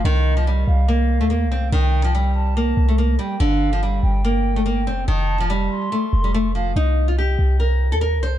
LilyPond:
<<
  \new Staff \with { instrumentName = "Soft synth lead" } { \time 4/4 \key c \dorian \tempo 4 = 143 ees''4. f''2~ f''8 | g''4. a''2 g''8 | f''4. g''2~ g''8 | a''4. c'''2 f''8 |
r1 | }
  \new Staff \with { instrumentName = "Nylon-string guitar" } { \time 4/4 \key c \dorian ees8. f16 g4 bes8. a16 bes8 c'8 | ees8. f16 g4 bes8. a16 bes8 g8 | d8. f16 g4 bes8. a16 bes8 c'8 | ees8. f16 g4 a8. g16 a8 f8 |
ees'8. f'16 g'4 bes'8. a'16 bes'8 c''8 | }
  \new Staff \with { instrumentName = "808-style bass" } { \clef bass \time 4/4 \key c \dorian c,4. c,4~ c,16 ees,8~ ees,32 c,8~ c,32 | c,2~ c,8 c,4 r8 | g,,4. g,,2 f,,8 | f,,4. r4 f,,4. |
c,4. c,4~ c,16 ees,8~ ees,32 c,8~ c,32 | }
>>